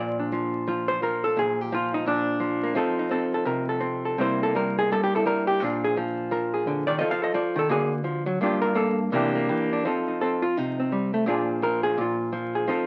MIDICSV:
0, 0, Header, 1, 2, 480
1, 0, Start_track
1, 0, Tempo, 351494
1, 1874, Time_signature, 4, 2, 24, 8
1, 11480, Tempo, 359497
1, 15320, Tempo, 349040
1, 17498, End_track
2, 0, Start_track
2, 0, Title_t, "Hollow-body jazz guitar"
2, 0, Program_c, 0, 26
2, 0, Note_on_c, 0, 46, 71
2, 0, Note_on_c, 0, 53, 59
2, 0, Note_on_c, 0, 62, 41
2, 0, Note_on_c, 0, 74, 75
2, 244, Note_off_c, 0, 74, 0
2, 261, Note_off_c, 0, 62, 0
2, 266, Note_on_c, 0, 62, 38
2, 437, Note_off_c, 0, 53, 0
2, 442, Note_on_c, 0, 53, 52
2, 923, Note_off_c, 0, 53, 0
2, 923, Note_on_c, 0, 53, 62
2, 935, Note_on_c, 0, 65, 47
2, 1204, Note_on_c, 0, 72, 85
2, 1390, Note_off_c, 0, 72, 0
2, 1396, Note_off_c, 0, 53, 0
2, 1396, Note_on_c, 0, 53, 53
2, 1408, Note_on_c, 0, 70, 72
2, 1688, Note_off_c, 0, 65, 0
2, 1694, Note_on_c, 0, 69, 76
2, 1699, Note_off_c, 0, 70, 0
2, 1848, Note_off_c, 0, 46, 0
2, 1854, Note_off_c, 0, 62, 0
2, 1867, Note_on_c, 0, 46, 65
2, 1872, Note_off_c, 0, 69, 0
2, 1895, Note_on_c, 0, 68, 84
2, 2198, Note_off_c, 0, 68, 0
2, 2198, Note_on_c, 0, 67, 85
2, 2348, Note_off_c, 0, 53, 0
2, 2354, Note_on_c, 0, 53, 63
2, 2361, Note_off_c, 0, 67, 0
2, 2383, Note_on_c, 0, 65, 71
2, 2647, Note_off_c, 0, 65, 0
2, 2652, Note_on_c, 0, 63, 82
2, 2800, Note_off_c, 0, 46, 0
2, 2816, Note_on_c, 0, 46, 59
2, 2826, Note_off_c, 0, 63, 0
2, 2834, Note_on_c, 0, 62, 87
2, 3263, Note_off_c, 0, 53, 0
2, 3279, Note_on_c, 0, 53, 58
2, 3598, Note_on_c, 0, 58, 50
2, 3740, Note_off_c, 0, 53, 0
2, 3755, Note_off_c, 0, 46, 0
2, 3757, Note_on_c, 0, 53, 67
2, 3764, Note_off_c, 0, 58, 0
2, 3770, Note_on_c, 0, 60, 59
2, 3772, Note_off_c, 0, 62, 0
2, 3777, Note_on_c, 0, 63, 56
2, 3783, Note_on_c, 0, 69, 61
2, 4067, Note_off_c, 0, 63, 0
2, 4084, Note_on_c, 0, 63, 52
2, 4238, Note_off_c, 0, 69, 0
2, 4239, Note_off_c, 0, 60, 0
2, 4244, Note_on_c, 0, 60, 54
2, 4254, Note_on_c, 0, 69, 55
2, 4547, Note_off_c, 0, 69, 0
2, 4563, Note_on_c, 0, 69, 64
2, 4717, Note_on_c, 0, 48, 62
2, 4729, Note_off_c, 0, 69, 0
2, 4734, Note_on_c, 0, 70, 58
2, 5033, Note_off_c, 0, 70, 0
2, 5039, Note_on_c, 0, 69, 59
2, 5178, Note_off_c, 0, 60, 0
2, 5195, Note_on_c, 0, 60, 52
2, 5518, Note_off_c, 0, 69, 0
2, 5535, Note_on_c, 0, 69, 51
2, 5690, Note_off_c, 0, 60, 0
2, 5695, Note_off_c, 0, 48, 0
2, 5704, Note_off_c, 0, 69, 0
2, 5711, Note_on_c, 0, 48, 64
2, 5713, Note_off_c, 0, 63, 0
2, 5714, Note_off_c, 0, 53, 0
2, 5719, Note_on_c, 0, 55, 40
2, 5729, Note_on_c, 0, 58, 44
2, 5739, Note_on_c, 0, 64, 48
2, 5750, Note_on_c, 0, 72, 78
2, 6046, Note_off_c, 0, 72, 0
2, 6052, Note_on_c, 0, 69, 74
2, 6196, Note_off_c, 0, 55, 0
2, 6213, Note_on_c, 0, 55, 53
2, 6225, Note_off_c, 0, 69, 0
2, 6231, Note_on_c, 0, 70, 78
2, 6530, Note_off_c, 0, 70, 0
2, 6535, Note_on_c, 0, 68, 87
2, 6702, Note_off_c, 0, 48, 0
2, 6714, Note_off_c, 0, 68, 0
2, 6715, Note_on_c, 0, 43, 62
2, 6725, Note_on_c, 0, 69, 87
2, 6870, Note_off_c, 0, 69, 0
2, 6876, Note_on_c, 0, 67, 85
2, 7018, Note_off_c, 0, 64, 0
2, 7034, Note_on_c, 0, 64, 47
2, 7035, Note_off_c, 0, 67, 0
2, 7045, Note_on_c, 0, 69, 86
2, 7161, Note_off_c, 0, 55, 0
2, 7178, Note_on_c, 0, 55, 61
2, 7188, Note_off_c, 0, 69, 0
2, 7193, Note_on_c, 0, 70, 86
2, 7468, Note_off_c, 0, 70, 0
2, 7474, Note_on_c, 0, 67, 85
2, 7644, Note_off_c, 0, 55, 0
2, 7649, Note_off_c, 0, 64, 0
2, 7649, Note_on_c, 0, 65, 77
2, 7663, Note_off_c, 0, 67, 0
2, 7671, Note_off_c, 0, 58, 0
2, 7672, Note_off_c, 0, 43, 0
2, 7678, Note_on_c, 0, 46, 69
2, 7685, Note_on_c, 0, 53, 45
2, 7703, Note_on_c, 0, 62, 42
2, 7961, Note_off_c, 0, 65, 0
2, 7981, Note_on_c, 0, 68, 81
2, 8149, Note_off_c, 0, 53, 0
2, 8153, Note_off_c, 0, 68, 0
2, 8154, Note_on_c, 0, 53, 62
2, 8620, Note_off_c, 0, 53, 0
2, 8620, Note_on_c, 0, 53, 58
2, 8628, Note_on_c, 0, 70, 53
2, 8927, Note_on_c, 0, 68, 45
2, 9104, Note_off_c, 0, 53, 0
2, 9109, Note_on_c, 0, 50, 57
2, 9376, Note_off_c, 0, 70, 0
2, 9382, Note_on_c, 0, 74, 87
2, 9384, Note_off_c, 0, 50, 0
2, 9390, Note_on_c, 0, 51, 75
2, 9535, Note_off_c, 0, 74, 0
2, 9540, Note_on_c, 0, 75, 90
2, 9547, Note_off_c, 0, 46, 0
2, 9551, Note_off_c, 0, 68, 0
2, 9559, Note_off_c, 0, 62, 0
2, 9562, Note_on_c, 0, 53, 73
2, 9566, Note_off_c, 0, 51, 0
2, 9573, Note_on_c, 0, 65, 46
2, 9579, Note_on_c, 0, 69, 48
2, 9705, Note_off_c, 0, 75, 0
2, 9710, Note_on_c, 0, 77, 90
2, 9842, Note_off_c, 0, 69, 0
2, 9858, Note_on_c, 0, 69, 48
2, 9876, Note_off_c, 0, 77, 0
2, 9881, Note_on_c, 0, 75, 70
2, 10014, Note_off_c, 0, 53, 0
2, 10027, Note_on_c, 0, 53, 70
2, 10031, Note_off_c, 0, 75, 0
2, 10037, Note_on_c, 0, 74, 55
2, 10320, Note_on_c, 0, 51, 66
2, 10339, Note_off_c, 0, 74, 0
2, 10340, Note_off_c, 0, 53, 0
2, 10343, Note_off_c, 0, 69, 0
2, 10363, Note_on_c, 0, 69, 79
2, 10504, Note_off_c, 0, 65, 0
2, 10507, Note_on_c, 0, 50, 77
2, 10511, Note_off_c, 0, 51, 0
2, 10513, Note_on_c, 0, 58, 54
2, 10523, Note_on_c, 0, 66, 47
2, 10529, Note_off_c, 0, 69, 0
2, 10535, Note_on_c, 0, 68, 87
2, 10830, Note_off_c, 0, 68, 0
2, 10974, Note_off_c, 0, 58, 0
2, 10980, Note_on_c, 0, 53, 56
2, 11279, Note_off_c, 0, 53, 0
2, 11284, Note_on_c, 0, 54, 70
2, 11450, Note_off_c, 0, 50, 0
2, 11456, Note_off_c, 0, 66, 0
2, 11472, Note_off_c, 0, 54, 0
2, 11483, Note_on_c, 0, 43, 72
2, 11492, Note_on_c, 0, 58, 50
2, 11506, Note_on_c, 0, 62, 50
2, 11518, Note_on_c, 0, 65, 55
2, 11525, Note_on_c, 0, 67, 45
2, 11753, Note_off_c, 0, 67, 0
2, 11759, Note_on_c, 0, 70, 85
2, 11926, Note_off_c, 0, 58, 0
2, 11942, Note_on_c, 0, 58, 70
2, 11945, Note_off_c, 0, 70, 0
2, 11952, Note_off_c, 0, 65, 0
2, 11957, Note_on_c, 0, 69, 72
2, 12256, Note_off_c, 0, 69, 0
2, 12405, Note_off_c, 0, 58, 0
2, 12425, Note_off_c, 0, 62, 0
2, 12429, Note_off_c, 0, 43, 0
2, 12434, Note_on_c, 0, 48, 79
2, 12443, Note_on_c, 0, 52, 63
2, 12449, Note_on_c, 0, 58, 63
2, 12463, Note_on_c, 0, 62, 64
2, 12474, Note_on_c, 0, 67, 65
2, 12725, Note_off_c, 0, 58, 0
2, 12741, Note_on_c, 0, 58, 59
2, 12909, Note_off_c, 0, 67, 0
2, 12913, Note_off_c, 0, 52, 0
2, 12919, Note_off_c, 0, 48, 0
2, 12928, Note_on_c, 0, 52, 59
2, 12929, Note_on_c, 0, 67, 50
2, 13228, Note_off_c, 0, 62, 0
2, 13244, Note_on_c, 0, 62, 62
2, 13390, Note_off_c, 0, 52, 0
2, 13408, Note_off_c, 0, 58, 0
2, 13408, Note_on_c, 0, 53, 64
2, 13410, Note_off_c, 0, 67, 0
2, 13414, Note_on_c, 0, 60, 41
2, 13416, Note_off_c, 0, 62, 0
2, 13428, Note_on_c, 0, 63, 45
2, 13434, Note_on_c, 0, 69, 40
2, 13695, Note_off_c, 0, 63, 0
2, 13711, Note_on_c, 0, 63, 41
2, 13876, Note_off_c, 0, 69, 0
2, 13890, Note_off_c, 0, 60, 0
2, 13892, Note_on_c, 0, 69, 66
2, 13906, Note_on_c, 0, 60, 50
2, 14168, Note_off_c, 0, 63, 0
2, 14173, Note_on_c, 0, 65, 74
2, 14194, Note_off_c, 0, 69, 0
2, 14370, Note_off_c, 0, 65, 0
2, 14370, Note_on_c, 0, 63, 69
2, 14380, Note_on_c, 0, 48, 56
2, 14655, Note_off_c, 0, 60, 0
2, 14671, Note_on_c, 0, 60, 42
2, 14833, Note_off_c, 0, 53, 0
2, 14838, Note_on_c, 0, 55, 59
2, 14845, Note_off_c, 0, 63, 0
2, 15121, Note_off_c, 0, 55, 0
2, 15127, Note_on_c, 0, 57, 68
2, 15292, Note_on_c, 0, 46, 69
2, 15300, Note_off_c, 0, 60, 0
2, 15303, Note_off_c, 0, 57, 0
2, 15308, Note_on_c, 0, 53, 49
2, 15312, Note_on_c, 0, 62, 46
2, 15323, Note_on_c, 0, 65, 41
2, 15325, Note_off_c, 0, 48, 0
2, 15338, Note_on_c, 0, 68, 46
2, 15783, Note_off_c, 0, 53, 0
2, 15789, Note_on_c, 0, 53, 52
2, 15797, Note_off_c, 0, 68, 0
2, 15802, Note_on_c, 0, 70, 80
2, 16072, Note_off_c, 0, 70, 0
2, 16077, Note_on_c, 0, 68, 86
2, 16260, Note_off_c, 0, 46, 0
2, 16271, Note_off_c, 0, 68, 0
2, 16276, Note_on_c, 0, 46, 68
2, 16314, Note_off_c, 0, 65, 0
2, 16320, Note_on_c, 0, 65, 61
2, 16749, Note_off_c, 0, 53, 0
2, 16755, Note_on_c, 0, 53, 59
2, 16779, Note_off_c, 0, 65, 0
2, 17065, Note_on_c, 0, 68, 51
2, 17214, Note_off_c, 0, 46, 0
2, 17217, Note_off_c, 0, 62, 0
2, 17221, Note_off_c, 0, 68, 0
2, 17232, Note_off_c, 0, 53, 0
2, 17237, Note_on_c, 0, 53, 66
2, 17251, Note_on_c, 0, 60, 45
2, 17257, Note_on_c, 0, 63, 48
2, 17271, Note_on_c, 0, 69, 53
2, 17498, Note_off_c, 0, 53, 0
2, 17498, Note_off_c, 0, 60, 0
2, 17498, Note_off_c, 0, 63, 0
2, 17498, Note_off_c, 0, 69, 0
2, 17498, End_track
0, 0, End_of_file